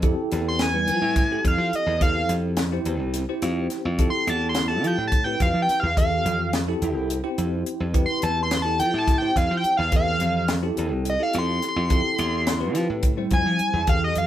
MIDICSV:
0, 0, Header, 1, 6, 480
1, 0, Start_track
1, 0, Tempo, 564972
1, 32, Time_signature, 7, 3, 24, 8
1, 12122, End_track
2, 0, Start_track
2, 0, Title_t, "Analog synth lead"
2, 0, Program_c, 0, 81
2, 411, Note_on_c, 0, 84, 89
2, 514, Note_off_c, 0, 84, 0
2, 528, Note_on_c, 0, 80, 106
2, 1218, Note_off_c, 0, 80, 0
2, 1253, Note_on_c, 0, 77, 80
2, 1476, Note_off_c, 0, 77, 0
2, 1491, Note_on_c, 0, 75, 90
2, 1714, Note_off_c, 0, 75, 0
2, 1718, Note_on_c, 0, 77, 106
2, 1948, Note_off_c, 0, 77, 0
2, 3485, Note_on_c, 0, 84, 110
2, 3634, Note_off_c, 0, 84, 0
2, 3651, Note_on_c, 0, 81, 90
2, 3796, Note_off_c, 0, 81, 0
2, 3817, Note_on_c, 0, 84, 93
2, 3960, Note_off_c, 0, 84, 0
2, 3976, Note_on_c, 0, 81, 78
2, 4119, Note_off_c, 0, 81, 0
2, 4140, Note_on_c, 0, 79, 80
2, 4281, Note_off_c, 0, 79, 0
2, 4312, Note_on_c, 0, 81, 87
2, 4448, Note_off_c, 0, 81, 0
2, 4455, Note_on_c, 0, 79, 87
2, 4598, Note_off_c, 0, 79, 0
2, 4606, Note_on_c, 0, 77, 89
2, 4754, Note_off_c, 0, 77, 0
2, 4778, Note_on_c, 0, 79, 90
2, 4920, Note_off_c, 0, 79, 0
2, 4926, Note_on_c, 0, 77, 89
2, 5072, Note_off_c, 0, 77, 0
2, 5077, Note_on_c, 0, 77, 109
2, 5540, Note_off_c, 0, 77, 0
2, 6846, Note_on_c, 0, 84, 112
2, 6992, Note_off_c, 0, 84, 0
2, 6997, Note_on_c, 0, 81, 82
2, 7150, Note_off_c, 0, 81, 0
2, 7161, Note_on_c, 0, 84, 82
2, 7312, Note_off_c, 0, 84, 0
2, 7325, Note_on_c, 0, 81, 89
2, 7467, Note_off_c, 0, 81, 0
2, 7472, Note_on_c, 0, 79, 91
2, 7628, Note_off_c, 0, 79, 0
2, 7634, Note_on_c, 0, 81, 90
2, 7789, Note_off_c, 0, 81, 0
2, 7800, Note_on_c, 0, 79, 79
2, 7952, Note_off_c, 0, 79, 0
2, 7961, Note_on_c, 0, 77, 74
2, 8113, Note_off_c, 0, 77, 0
2, 8133, Note_on_c, 0, 79, 88
2, 8279, Note_off_c, 0, 79, 0
2, 8303, Note_on_c, 0, 77, 88
2, 8444, Note_off_c, 0, 77, 0
2, 8463, Note_on_c, 0, 77, 108
2, 8915, Note_off_c, 0, 77, 0
2, 9427, Note_on_c, 0, 75, 84
2, 9524, Note_off_c, 0, 75, 0
2, 9540, Note_on_c, 0, 77, 88
2, 9640, Note_off_c, 0, 77, 0
2, 9673, Note_on_c, 0, 84, 77
2, 9887, Note_off_c, 0, 84, 0
2, 9927, Note_on_c, 0, 84, 109
2, 10834, Note_off_c, 0, 84, 0
2, 11328, Note_on_c, 0, 80, 99
2, 11788, Note_off_c, 0, 80, 0
2, 11803, Note_on_c, 0, 77, 93
2, 11912, Note_off_c, 0, 77, 0
2, 11931, Note_on_c, 0, 75, 95
2, 12036, Note_off_c, 0, 75, 0
2, 12049, Note_on_c, 0, 77, 118
2, 12122, Note_off_c, 0, 77, 0
2, 12122, End_track
3, 0, Start_track
3, 0, Title_t, "Tine electric piano"
3, 0, Program_c, 1, 4
3, 26, Note_on_c, 1, 60, 98
3, 27, Note_on_c, 1, 64, 92
3, 27, Note_on_c, 1, 67, 94
3, 31, Note_on_c, 1, 69, 113
3, 550, Note_off_c, 1, 60, 0
3, 551, Note_off_c, 1, 64, 0
3, 551, Note_off_c, 1, 67, 0
3, 553, Note_off_c, 1, 69, 0
3, 624, Note_on_c, 1, 60, 69
3, 626, Note_on_c, 1, 55, 67
3, 628, Note_on_c, 1, 71, 73
3, 629, Note_on_c, 1, 64, 66
3, 1045, Note_off_c, 1, 60, 0
3, 1046, Note_off_c, 1, 55, 0
3, 1047, Note_off_c, 1, 71, 0
3, 1048, Note_off_c, 1, 64, 0
3, 1117, Note_on_c, 1, 60, 68
3, 1121, Note_on_c, 1, 64, 67
3, 1121, Note_on_c, 1, 69, 80
3, 1122, Note_on_c, 1, 67, 67
3, 1636, Note_off_c, 1, 60, 0
3, 1638, Note_off_c, 1, 64, 0
3, 1638, Note_off_c, 1, 67, 0
3, 1638, Note_off_c, 1, 69, 0
3, 1706, Note_on_c, 1, 60, 71
3, 1707, Note_on_c, 1, 67, 67
3, 1710, Note_on_c, 1, 64, 68
3, 1711, Note_on_c, 1, 69, 84
3, 2230, Note_off_c, 1, 60, 0
3, 2231, Note_off_c, 1, 67, 0
3, 2232, Note_off_c, 1, 64, 0
3, 2233, Note_off_c, 1, 69, 0
3, 2312, Note_on_c, 1, 64, 84
3, 2314, Note_on_c, 1, 67, 86
3, 2315, Note_on_c, 1, 60, 83
3, 2323, Note_on_c, 1, 72, 105
3, 2729, Note_off_c, 1, 64, 0
3, 2730, Note_off_c, 1, 60, 0
3, 2730, Note_off_c, 1, 67, 0
3, 2734, Note_off_c, 1, 72, 0
3, 2794, Note_on_c, 1, 60, 79
3, 2795, Note_on_c, 1, 64, 78
3, 2796, Note_on_c, 1, 67, 80
3, 2798, Note_on_c, 1, 72, 86
3, 3314, Note_off_c, 1, 60, 0
3, 3315, Note_off_c, 1, 64, 0
3, 3315, Note_off_c, 1, 67, 0
3, 3316, Note_off_c, 1, 72, 0
3, 3391, Note_on_c, 1, 60, 80
3, 3391, Note_on_c, 1, 64, 82
3, 3395, Note_on_c, 1, 67, 76
3, 3395, Note_on_c, 1, 69, 100
3, 3913, Note_off_c, 1, 60, 0
3, 3913, Note_off_c, 1, 64, 0
3, 3915, Note_off_c, 1, 67, 0
3, 3915, Note_off_c, 1, 69, 0
3, 3989, Note_on_c, 1, 60, 72
3, 3990, Note_on_c, 1, 67, 70
3, 3992, Note_on_c, 1, 64, 72
3, 3995, Note_on_c, 1, 69, 82
3, 4407, Note_off_c, 1, 60, 0
3, 4408, Note_off_c, 1, 67, 0
3, 4409, Note_off_c, 1, 64, 0
3, 4410, Note_off_c, 1, 69, 0
3, 4462, Note_on_c, 1, 60, 72
3, 4467, Note_on_c, 1, 71, 77
3, 4469, Note_on_c, 1, 64, 67
3, 4470, Note_on_c, 1, 67, 69
3, 4989, Note_off_c, 1, 60, 0
3, 4991, Note_off_c, 1, 71, 0
3, 4992, Note_off_c, 1, 64, 0
3, 4992, Note_off_c, 1, 67, 0
3, 5078, Note_on_c, 1, 60, 85
3, 5081, Note_on_c, 1, 52, 77
3, 5082, Note_on_c, 1, 67, 75
3, 5084, Note_on_c, 1, 69, 89
3, 5597, Note_off_c, 1, 60, 0
3, 5598, Note_off_c, 1, 52, 0
3, 5598, Note_off_c, 1, 67, 0
3, 5600, Note_off_c, 1, 69, 0
3, 5675, Note_on_c, 1, 67, 85
3, 5678, Note_on_c, 1, 60, 87
3, 5679, Note_on_c, 1, 64, 89
3, 5680, Note_on_c, 1, 69, 107
3, 6091, Note_off_c, 1, 67, 0
3, 6092, Note_off_c, 1, 60, 0
3, 6093, Note_off_c, 1, 64, 0
3, 6093, Note_off_c, 1, 69, 0
3, 6149, Note_on_c, 1, 67, 77
3, 6149, Note_on_c, 1, 72, 94
3, 6151, Note_on_c, 1, 60, 88
3, 6153, Note_on_c, 1, 64, 78
3, 6672, Note_off_c, 1, 67, 0
3, 6673, Note_off_c, 1, 72, 0
3, 6674, Note_off_c, 1, 60, 0
3, 6675, Note_off_c, 1, 64, 0
3, 6744, Note_on_c, 1, 71, 92
3, 6747, Note_on_c, 1, 64, 77
3, 6748, Note_on_c, 1, 60, 81
3, 6752, Note_on_c, 1, 67, 72
3, 7270, Note_off_c, 1, 71, 0
3, 7272, Note_off_c, 1, 60, 0
3, 7272, Note_off_c, 1, 64, 0
3, 7274, Note_off_c, 1, 67, 0
3, 7347, Note_on_c, 1, 69, 76
3, 7350, Note_on_c, 1, 60, 69
3, 7352, Note_on_c, 1, 64, 65
3, 7353, Note_on_c, 1, 67, 67
3, 7768, Note_off_c, 1, 69, 0
3, 7769, Note_off_c, 1, 60, 0
3, 7770, Note_off_c, 1, 64, 0
3, 7771, Note_off_c, 1, 67, 0
3, 7834, Note_on_c, 1, 67, 70
3, 7834, Note_on_c, 1, 72, 80
3, 7836, Note_on_c, 1, 60, 67
3, 7837, Note_on_c, 1, 64, 68
3, 8355, Note_off_c, 1, 72, 0
3, 8356, Note_off_c, 1, 67, 0
3, 8357, Note_off_c, 1, 60, 0
3, 8357, Note_off_c, 1, 64, 0
3, 8430, Note_on_c, 1, 67, 67
3, 8433, Note_on_c, 1, 60, 78
3, 8434, Note_on_c, 1, 69, 83
3, 8436, Note_on_c, 1, 52, 75
3, 8954, Note_off_c, 1, 67, 0
3, 8956, Note_off_c, 1, 60, 0
3, 8956, Note_off_c, 1, 69, 0
3, 8957, Note_off_c, 1, 52, 0
3, 9028, Note_on_c, 1, 64, 79
3, 9029, Note_on_c, 1, 60, 93
3, 9031, Note_on_c, 1, 67, 87
3, 9033, Note_on_c, 1, 69, 94
3, 9449, Note_off_c, 1, 60, 0
3, 9449, Note_off_c, 1, 64, 0
3, 9450, Note_off_c, 1, 67, 0
3, 9451, Note_off_c, 1, 69, 0
3, 9507, Note_on_c, 1, 60, 70
3, 9512, Note_on_c, 1, 69, 76
3, 9514, Note_on_c, 1, 64, 65
3, 9517, Note_on_c, 1, 67, 63
3, 10033, Note_off_c, 1, 60, 0
3, 10035, Note_off_c, 1, 69, 0
3, 10036, Note_off_c, 1, 64, 0
3, 10038, Note_off_c, 1, 67, 0
3, 10110, Note_on_c, 1, 67, 78
3, 10111, Note_on_c, 1, 60, 85
3, 10111, Note_on_c, 1, 64, 82
3, 10115, Note_on_c, 1, 69, 98
3, 10635, Note_off_c, 1, 60, 0
3, 10635, Note_off_c, 1, 64, 0
3, 10635, Note_off_c, 1, 67, 0
3, 10637, Note_off_c, 1, 69, 0
3, 10709, Note_on_c, 1, 71, 96
3, 10712, Note_on_c, 1, 60, 86
3, 10713, Note_on_c, 1, 67, 73
3, 10715, Note_on_c, 1, 64, 81
3, 11130, Note_off_c, 1, 71, 0
3, 11132, Note_off_c, 1, 60, 0
3, 11132, Note_off_c, 1, 67, 0
3, 11133, Note_off_c, 1, 64, 0
3, 11190, Note_on_c, 1, 60, 76
3, 11193, Note_on_c, 1, 64, 73
3, 11196, Note_on_c, 1, 55, 75
3, 11197, Note_on_c, 1, 72, 85
3, 11715, Note_off_c, 1, 60, 0
3, 11717, Note_off_c, 1, 64, 0
3, 11718, Note_off_c, 1, 55, 0
3, 11719, Note_off_c, 1, 72, 0
3, 11785, Note_on_c, 1, 52, 70
3, 11785, Note_on_c, 1, 60, 80
3, 11787, Note_on_c, 1, 67, 73
3, 11791, Note_on_c, 1, 69, 85
3, 12122, Note_off_c, 1, 52, 0
3, 12122, Note_off_c, 1, 60, 0
3, 12122, Note_off_c, 1, 67, 0
3, 12122, Note_off_c, 1, 69, 0
3, 12122, End_track
4, 0, Start_track
4, 0, Title_t, "Slap bass"
4, 0, Program_c, 2, 36
4, 0, Note_on_c, 2, 41, 81
4, 117, Note_off_c, 2, 41, 0
4, 273, Note_on_c, 2, 40, 91
4, 742, Note_on_c, 2, 53, 91
4, 754, Note_off_c, 2, 40, 0
4, 849, Note_off_c, 2, 53, 0
4, 862, Note_on_c, 2, 45, 78
4, 1176, Note_off_c, 2, 45, 0
4, 1228, Note_on_c, 2, 41, 76
4, 1333, Note_off_c, 2, 41, 0
4, 1342, Note_on_c, 2, 53, 77
4, 1450, Note_off_c, 2, 53, 0
4, 1583, Note_on_c, 2, 40, 69
4, 1897, Note_off_c, 2, 40, 0
4, 1945, Note_on_c, 2, 41, 81
4, 2361, Note_off_c, 2, 41, 0
4, 2427, Note_on_c, 2, 40, 88
4, 2548, Note_off_c, 2, 40, 0
4, 2548, Note_on_c, 2, 36, 78
4, 2756, Note_off_c, 2, 36, 0
4, 2907, Note_on_c, 2, 41, 92
4, 3116, Note_off_c, 2, 41, 0
4, 3272, Note_on_c, 2, 41, 86
4, 3478, Note_off_c, 2, 41, 0
4, 3629, Note_on_c, 2, 40, 93
4, 4109, Note_off_c, 2, 40, 0
4, 4109, Note_on_c, 2, 53, 102
4, 4214, Note_off_c, 2, 53, 0
4, 4230, Note_on_c, 2, 45, 72
4, 4540, Note_off_c, 2, 45, 0
4, 4591, Note_on_c, 2, 41, 76
4, 4695, Note_off_c, 2, 41, 0
4, 4705, Note_on_c, 2, 53, 88
4, 4811, Note_off_c, 2, 53, 0
4, 4952, Note_on_c, 2, 40, 73
4, 5262, Note_off_c, 2, 40, 0
4, 5311, Note_on_c, 2, 41, 78
4, 5725, Note_off_c, 2, 41, 0
4, 5792, Note_on_c, 2, 40, 91
4, 5905, Note_off_c, 2, 40, 0
4, 5905, Note_on_c, 2, 36, 83
4, 6115, Note_off_c, 2, 36, 0
4, 6269, Note_on_c, 2, 41, 85
4, 6477, Note_off_c, 2, 41, 0
4, 6629, Note_on_c, 2, 41, 86
4, 6837, Note_off_c, 2, 41, 0
4, 6990, Note_on_c, 2, 40, 86
4, 7472, Note_on_c, 2, 53, 93
4, 7484, Note_off_c, 2, 40, 0
4, 7576, Note_off_c, 2, 53, 0
4, 7592, Note_on_c, 2, 45, 76
4, 7903, Note_off_c, 2, 45, 0
4, 7953, Note_on_c, 2, 41, 82
4, 8057, Note_off_c, 2, 41, 0
4, 8077, Note_on_c, 2, 53, 77
4, 8179, Note_off_c, 2, 53, 0
4, 8313, Note_on_c, 2, 40, 75
4, 8623, Note_off_c, 2, 40, 0
4, 8675, Note_on_c, 2, 41, 79
4, 9088, Note_off_c, 2, 41, 0
4, 9159, Note_on_c, 2, 40, 92
4, 9272, Note_off_c, 2, 40, 0
4, 9272, Note_on_c, 2, 36, 76
4, 9480, Note_off_c, 2, 36, 0
4, 9638, Note_on_c, 2, 41, 92
4, 9844, Note_off_c, 2, 41, 0
4, 9993, Note_on_c, 2, 41, 85
4, 10201, Note_off_c, 2, 41, 0
4, 10353, Note_on_c, 2, 40, 84
4, 10829, Note_off_c, 2, 40, 0
4, 10829, Note_on_c, 2, 53, 109
4, 10935, Note_off_c, 2, 53, 0
4, 10956, Note_on_c, 2, 45, 78
4, 11266, Note_off_c, 2, 45, 0
4, 11311, Note_on_c, 2, 41, 85
4, 11417, Note_off_c, 2, 41, 0
4, 11433, Note_on_c, 2, 53, 81
4, 11538, Note_off_c, 2, 53, 0
4, 11667, Note_on_c, 2, 40, 80
4, 11981, Note_off_c, 2, 40, 0
4, 12029, Note_on_c, 2, 41, 88
4, 12122, Note_off_c, 2, 41, 0
4, 12122, End_track
5, 0, Start_track
5, 0, Title_t, "Muted slap bass strokes"
5, 1468, Note_on_c, 9, 29, 34
5, 1552, Note_off_c, 9, 29, 0
5, 4830, Note_on_c, 9, 29, 40
5, 4915, Note_off_c, 9, 29, 0
5, 8191, Note_on_c, 9, 29, 38
5, 8276, Note_off_c, 9, 29, 0
5, 11552, Note_on_c, 9, 29, 39
5, 11637, Note_off_c, 9, 29, 0
5, 12122, End_track
6, 0, Start_track
6, 0, Title_t, "Drums"
6, 20, Note_on_c, 9, 42, 66
6, 25, Note_on_c, 9, 36, 102
6, 105, Note_off_c, 9, 42, 0
6, 110, Note_off_c, 9, 36, 0
6, 268, Note_on_c, 9, 42, 62
6, 271, Note_on_c, 9, 38, 33
6, 353, Note_off_c, 9, 42, 0
6, 356, Note_off_c, 9, 38, 0
6, 502, Note_on_c, 9, 42, 71
6, 505, Note_on_c, 9, 38, 112
6, 587, Note_off_c, 9, 42, 0
6, 590, Note_off_c, 9, 38, 0
6, 745, Note_on_c, 9, 42, 59
6, 830, Note_off_c, 9, 42, 0
6, 985, Note_on_c, 9, 42, 79
6, 986, Note_on_c, 9, 36, 98
6, 988, Note_on_c, 9, 38, 32
6, 1070, Note_off_c, 9, 42, 0
6, 1071, Note_off_c, 9, 36, 0
6, 1073, Note_off_c, 9, 38, 0
6, 1229, Note_on_c, 9, 36, 79
6, 1231, Note_on_c, 9, 42, 64
6, 1314, Note_off_c, 9, 36, 0
6, 1316, Note_off_c, 9, 42, 0
6, 1471, Note_on_c, 9, 42, 62
6, 1556, Note_off_c, 9, 42, 0
6, 1709, Note_on_c, 9, 36, 102
6, 1709, Note_on_c, 9, 42, 73
6, 1794, Note_off_c, 9, 36, 0
6, 1794, Note_off_c, 9, 42, 0
6, 1947, Note_on_c, 9, 42, 66
6, 1950, Note_on_c, 9, 38, 36
6, 2032, Note_off_c, 9, 42, 0
6, 2035, Note_off_c, 9, 38, 0
6, 2181, Note_on_c, 9, 42, 87
6, 2184, Note_on_c, 9, 38, 112
6, 2266, Note_off_c, 9, 42, 0
6, 2269, Note_off_c, 9, 38, 0
6, 2425, Note_on_c, 9, 42, 64
6, 2510, Note_off_c, 9, 42, 0
6, 2665, Note_on_c, 9, 42, 88
6, 2668, Note_on_c, 9, 38, 34
6, 2750, Note_off_c, 9, 42, 0
6, 2753, Note_off_c, 9, 38, 0
6, 2906, Note_on_c, 9, 42, 64
6, 2908, Note_on_c, 9, 38, 34
6, 2991, Note_off_c, 9, 42, 0
6, 2993, Note_off_c, 9, 38, 0
6, 3145, Note_on_c, 9, 42, 62
6, 3147, Note_on_c, 9, 38, 37
6, 3230, Note_off_c, 9, 42, 0
6, 3232, Note_off_c, 9, 38, 0
6, 3387, Note_on_c, 9, 42, 81
6, 3388, Note_on_c, 9, 36, 95
6, 3472, Note_off_c, 9, 42, 0
6, 3473, Note_off_c, 9, 36, 0
6, 3632, Note_on_c, 9, 42, 58
6, 3716, Note_off_c, 9, 42, 0
6, 3863, Note_on_c, 9, 42, 82
6, 3865, Note_on_c, 9, 38, 103
6, 3948, Note_off_c, 9, 42, 0
6, 3950, Note_off_c, 9, 38, 0
6, 4113, Note_on_c, 9, 42, 56
6, 4198, Note_off_c, 9, 42, 0
6, 4350, Note_on_c, 9, 42, 81
6, 4351, Note_on_c, 9, 36, 94
6, 4435, Note_off_c, 9, 42, 0
6, 4436, Note_off_c, 9, 36, 0
6, 4590, Note_on_c, 9, 42, 60
6, 4591, Note_on_c, 9, 36, 79
6, 4675, Note_off_c, 9, 42, 0
6, 4676, Note_off_c, 9, 36, 0
6, 4836, Note_on_c, 9, 42, 61
6, 4838, Note_on_c, 9, 38, 33
6, 4921, Note_off_c, 9, 42, 0
6, 4923, Note_off_c, 9, 38, 0
6, 5073, Note_on_c, 9, 36, 97
6, 5075, Note_on_c, 9, 42, 80
6, 5158, Note_off_c, 9, 36, 0
6, 5160, Note_off_c, 9, 42, 0
6, 5318, Note_on_c, 9, 42, 60
6, 5403, Note_off_c, 9, 42, 0
6, 5550, Note_on_c, 9, 42, 77
6, 5552, Note_on_c, 9, 38, 106
6, 5635, Note_off_c, 9, 42, 0
6, 5637, Note_off_c, 9, 38, 0
6, 5794, Note_on_c, 9, 42, 58
6, 5879, Note_off_c, 9, 42, 0
6, 6033, Note_on_c, 9, 42, 82
6, 6118, Note_off_c, 9, 42, 0
6, 6270, Note_on_c, 9, 42, 67
6, 6355, Note_off_c, 9, 42, 0
6, 6512, Note_on_c, 9, 42, 69
6, 6597, Note_off_c, 9, 42, 0
6, 6749, Note_on_c, 9, 36, 102
6, 6749, Note_on_c, 9, 42, 76
6, 6834, Note_off_c, 9, 36, 0
6, 6834, Note_off_c, 9, 42, 0
6, 6985, Note_on_c, 9, 42, 61
6, 7070, Note_off_c, 9, 42, 0
6, 7231, Note_on_c, 9, 42, 89
6, 7233, Note_on_c, 9, 38, 99
6, 7316, Note_off_c, 9, 42, 0
6, 7318, Note_off_c, 9, 38, 0
6, 7475, Note_on_c, 9, 42, 66
6, 7560, Note_off_c, 9, 42, 0
6, 7711, Note_on_c, 9, 36, 108
6, 7713, Note_on_c, 9, 42, 77
6, 7715, Note_on_c, 9, 38, 34
6, 7796, Note_off_c, 9, 36, 0
6, 7798, Note_off_c, 9, 42, 0
6, 7800, Note_off_c, 9, 38, 0
6, 7952, Note_on_c, 9, 36, 73
6, 7957, Note_on_c, 9, 42, 60
6, 7959, Note_on_c, 9, 38, 35
6, 8037, Note_off_c, 9, 36, 0
6, 8042, Note_off_c, 9, 42, 0
6, 8044, Note_off_c, 9, 38, 0
6, 8191, Note_on_c, 9, 42, 57
6, 8276, Note_off_c, 9, 42, 0
6, 8427, Note_on_c, 9, 42, 74
6, 8430, Note_on_c, 9, 36, 101
6, 8512, Note_off_c, 9, 42, 0
6, 8515, Note_off_c, 9, 36, 0
6, 8666, Note_on_c, 9, 42, 56
6, 8751, Note_off_c, 9, 42, 0
6, 8906, Note_on_c, 9, 42, 75
6, 8909, Note_on_c, 9, 38, 118
6, 8991, Note_off_c, 9, 42, 0
6, 8994, Note_off_c, 9, 38, 0
6, 9151, Note_on_c, 9, 42, 57
6, 9236, Note_off_c, 9, 42, 0
6, 9391, Note_on_c, 9, 42, 78
6, 9476, Note_off_c, 9, 42, 0
6, 9630, Note_on_c, 9, 42, 62
6, 9632, Note_on_c, 9, 38, 36
6, 9715, Note_off_c, 9, 42, 0
6, 9717, Note_off_c, 9, 38, 0
6, 9875, Note_on_c, 9, 42, 61
6, 9878, Note_on_c, 9, 38, 34
6, 9960, Note_off_c, 9, 42, 0
6, 9963, Note_off_c, 9, 38, 0
6, 10111, Note_on_c, 9, 42, 80
6, 10114, Note_on_c, 9, 36, 103
6, 10196, Note_off_c, 9, 42, 0
6, 10199, Note_off_c, 9, 36, 0
6, 10352, Note_on_c, 9, 42, 66
6, 10437, Note_off_c, 9, 42, 0
6, 10593, Note_on_c, 9, 42, 93
6, 10595, Note_on_c, 9, 38, 117
6, 10678, Note_off_c, 9, 42, 0
6, 10680, Note_off_c, 9, 38, 0
6, 10832, Note_on_c, 9, 42, 63
6, 10834, Note_on_c, 9, 38, 34
6, 10917, Note_off_c, 9, 42, 0
6, 10919, Note_off_c, 9, 38, 0
6, 11068, Note_on_c, 9, 42, 91
6, 11072, Note_on_c, 9, 36, 109
6, 11153, Note_off_c, 9, 42, 0
6, 11157, Note_off_c, 9, 36, 0
6, 11305, Note_on_c, 9, 42, 64
6, 11311, Note_on_c, 9, 36, 84
6, 11390, Note_off_c, 9, 42, 0
6, 11396, Note_off_c, 9, 36, 0
6, 11547, Note_on_c, 9, 42, 62
6, 11632, Note_off_c, 9, 42, 0
6, 11786, Note_on_c, 9, 42, 76
6, 11789, Note_on_c, 9, 36, 101
6, 11871, Note_off_c, 9, 42, 0
6, 11874, Note_off_c, 9, 36, 0
6, 12026, Note_on_c, 9, 42, 66
6, 12111, Note_off_c, 9, 42, 0
6, 12122, End_track
0, 0, End_of_file